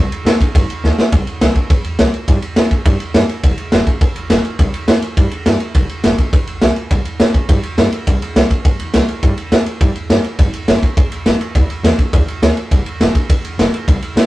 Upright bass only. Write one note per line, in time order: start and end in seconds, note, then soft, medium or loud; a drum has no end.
0.11 muted upright bass stroke medium
0.25 0.35 A2 medium
0.40 muted upright bass stroke medium
0.55 0.64 G1 medium
0.69 muted upright bass stroke medium
0.84 0.93 D2 medium
0.98 muted upright bass stroke medium
1.12 1.22 C2 loud
1.27 muted upright bass stroke medium
1.41 1.51 C2 medium
1.56 muted upright bass stroke medium
1.70 1.80 G2 medium
1.84 1.94 E2 medium
1.99 2.09 C2 loud
2.13 muted upright bass stroke medium
2.28 2.37 G2 medium
2.42 muted upright bass stroke medium
2.56 2.66 A2 medium
2.71 muted upright bass stroke medium
2.85 2.95 G2 medium
3.00 muted upright bass stroke medium
3.14 3.24 G2 loud
3.29 muted upright bass stroke medium
3.43 3.53 F1 loud
3.58 muted upright bass stroke medium
3.72 3.82 F1 loud
3.86 muted upright bass stroke medium
4.01 4.11 C2 medium
4.15 4.25 A1 medium
4.29 4.39 F1 medium
4.44 muted upright bass stroke medium
4.59 4.69 C2 loud
4.73 muted upright bass stroke medium
4.88 4.98 A2 loud
5.02 muted upright bass stroke medium
5.17 5.27 G2 loud
5.31 muted upright bass stroke medium
5.46 5.56 G2 loud
5.60 muted upright bass stroke medium
5.75 5.84 F1 medium
5.89 muted upright bass stroke medium
6.04 6.14 F1 loud
6.19 muted upright bass stroke medium
6.33 6.43 C2 medium
6.47 6.57 A1 medium
6.62 6.71 B1 loud
6.76 muted upright bass stroke medium
6.90 7.00 C2 loud
7.05 muted upright bass stroke medium
7.20 7.29 A2 medium
7.34 muted upright bass stroke medium
7.49 7.58 G2 medium
7.63 muted upright bass stroke medium
7.78 7.87 G2 loud
7.92 muted upright bass stroke medium
8.07 8.16 C2 loud
8.21 muted upright bass stroke medium
8.36 8.45 C2 medium
8.50 muted upright bass stroke medium
8.65 8.75 G2 medium
8.80 8.89 E2 medium
8.94 9.03 C2 medium
9.09 muted upright bass stroke medium
9.23 9.33 G2 medium
9.37 muted upright bass stroke medium
9.52 9.61 A2 loud
9.67 muted upright bass stroke medium
9.81 9.91 G2 medium
9.95 muted upright bass stroke medium
10.09 10.19 G2 medium
10.24 muted upright bass stroke medium
10.39 10.48 G1 medium
10.53 muted upright bass stroke medium
10.68 10.77 G1 loud
10.83 muted upright bass stroke medium
10.97 11.07 D2 medium
11.11 11.21 B1 medium
11.25 11.35 G1 medium
11.40 muted upright bass stroke medium
11.55 11.65 D2 medium
11.69 muted upright bass stroke medium
11.83 11.93 E2 loud
11.98 muted upright bass stroke medium
12.13 12.23 D2 medium
12.28 muted upright bass stroke medium
12.42 12.52 D2 loud
12.56 muted upright bass stroke medium
12.71 12.81 F1 loud
12.86 muted upright bass stroke medium
13.00 13.10 F1 medium
13.15 muted upright bass stroke medium
13.30 13.39 C2 loud
13.43 13.53 A1 medium
13.58 13.67 F1 medium
13.72 muted upright bass stroke medium
13.88 13.97 C2 loud
14.02 muted upright bass stroke medium
14.16 14.26 A2 loud